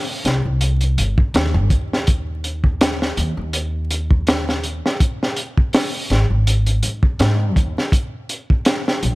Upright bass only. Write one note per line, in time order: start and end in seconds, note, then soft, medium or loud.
0.25 0.43 C2 medium
0.45 0.95 C2 medium
0.98 1.16 G1 medium
1.34 1.56 D#2 loud
1.54 1.69 G1 loud
1.70 3.14 D#2 medium
3.17 3.35 D#2 loud
3.37 4.80 D#2 medium
6.10 6.28 G#1 loud
6.30 6.80 G#1 medium
6.83 7.01 G#2 medium
7.20 7.56 G#2 loud
7.56 7.74 D#2 medium
9.03 9.15 A#1 loud